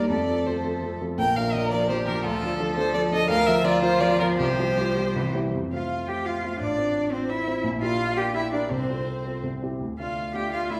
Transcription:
Already playing: G3 D#4 A#4
0.10 F2 A3 A4 D5
0.28 F3 C4 A4
0.46 F3 C4 A4 C5
0.64 F3 C4 A4
0.82 F3 C4 A4
1.01 F3 C4 A4
1.18 A#1 F3 A#4 G5
1.36 F3 D4 A#4 F5
1.53 F3 D4 A#4 D#5
1.71 F3 D4 A#4 D5
1.89 F3 D4 G4 A#4 C5
2.06 F3 D4 A#4
2.24 D2 F4 A4
2.43 F3 D4 A4
2.60 F3 D4 A4
2.77 F3 D4 A4 C5
2.94 F3 D4 A4 D5
3.12 F3 D4 A4 D#5
3.28 D2 F3 A#4 F5
3.46 F3 F4 A#4 E5
3.64 F3 F4 A#4 D5
3.82 F3 F4 A#4 C5
4.00 F3 F4 A#4 D5
4.20 F3 F4 A#4
4.38 C2 G4 C5
4.59 G3 F4 C5
4.78 G3 F4 C5
4.97 G3 F4 C5
5.16 C2 E3
5.35 G3 E4 C5
5.54 F2
5.72 A3 F4 C5 F5
6.08 A3 F4 G4 C5 G5
6.25 F4 F5
6.44 A3 F4 C5
6.60 A1 D4 D5
6.78 C4 F4 C5
7.12 C4 F4 C5
7.29 E4 E5
7.47 C4 F4 C5
7.64 A#1
7.81 D4 F4 G4 A#4 F5
8.17 D4 G4 A#4 G5
8.35 E4 E5
8.52 D4 G4 A#4 D5
8.71 C2 C4 C5
8.89 C4 F4 A4
9.25 C4 F4 A4
9.43 C2
9.62 C4 E4 G4
9.80 D2
9.99 A3 D4 F4 F5
10.34 A3 D4 F4 G4 G5
10.52 F4 F5
10.70 A3 D4 E4 F4 E5

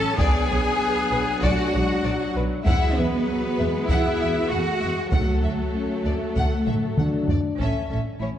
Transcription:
Already playing: F#3 C#4 A4 A5
0.18 B1 F#3 B3 D4 G#4 D5 G#5, taiko
0.50 B1 C#5
1.11 B1 B4
1.42 B1 A3 F#4 D5 F#5, taiko
1.73 B1 G#3 C#5
2.04 B1 F#3 D5
2.36 B1 B4
2.65 E2 G#3 E4 F#4 G#4 E5 F#5, taiko
2.96 E2 B3 B4 E5
3.27 F#3
3.58 E2 G#3 E5
3.88 E2 B3 E4 E5 F#5, taiko
4.21 E2 E5
4.49 E2 A3 F#4 F#5
4.81 E2 G#3 E5
5.12 D2 F#3 A3 A4 F#5, taiko
5.43 D2 E5
5.75 C#4
6.05 D2 A3 D5
6.36 D2 F#5, taiko
6.67 D2 E5, taiko low-mid
6.97 D2 D4 F#5, taiko mid
7.28 D2 D5, taiko low
7.58 A1 A2 C#4 A4 E5, taiko
7.89 A1 A2 C#4 A4 E5
8.20 A1 A2 C#4 E4 C#5

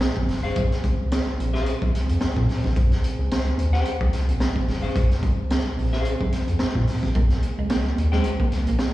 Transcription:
Already playing: C#3 C4 G#4
0.01 snare, closed hi-hat
0.17 G#1, kick
0.29 G1, snare, open hi-hat
0.43 G#1 C#4 G#4 C5 F5
0.56 A#1, kick, closed hi-hat
0.72 snare, closed hi-hat
0.84 C#2, kick, closed hi-hat
1.12 snare, closed hi-hat
1.40 A#1, closed hi-hat
1.54 C#4 G#4 C5 F5, snare
1.66 closed hi-hat
1.82 C#2, kick
1.95 snare, closed hi-hat
2.09 F2, closed hi-hat
2.21 snare, closed hi-hat
2.36 A#2, kick
2.49 snare, open hi-hat
2.64 G#1, kick, snare
2.76 A#1, kick, closed hi-hat
2.92 snare, closed hi-hat
3.04 closed hi-hat
3.19 C#2
3.31 snare, closed hi-hat
3.58 D#2, closed hi-hat
3.73 C#4 G#4 C5 G5, snare
3.85 C#2, closed hi-hat
4.01 C#2, kick
4.13 snare, closed hi-hat
4.28 A#1, closed hi-hat
4.40 snare, closed hi-hat
4.56 G#1, kick
4.68 G1, snare, open hi-hat
4.82 G#1 C#4 G#4 C5 F5
4.96 A#1, kick, closed hi-hat
5.11 snare, closed hi-hat
5.23 C#2, kick, closed hi-hat
5.50 snare, closed hi-hat
5.78 A#1, open hi-hat
5.93 C#4 G#4 C5 F5, snare
6.05 closed hi-hat
6.21 C#2, kick
6.32 snare, closed hi-hat
6.48 F2, closed hi-hat
6.59 snare, closed hi-hat
6.75 A#2, kick
6.87 snare, open hi-hat
7.03 G#1, kick, snare
7.15 A#1 A#3, kick, closed hi-hat
7.30 snare, closed hi-hat
7.43 muted clean electric guitar stroke, closed hi-hat
7.58 C#2 G#3
7.70 A#3, snare, closed hi-hat
7.86 muted clean electric guitar stroke
7.98 D#2, closed hi-hat
8.12 G#3 C#4 G#4 C5 G5, snare
8.24 C#2, closed hi-hat
8.40 C#2 A#3, kick
8.52 muted clean electric guitar stroke, snare, closed hi-hat
8.67 A#1 A#3, closed hi-hat
8.79 snare, closed hi-hat

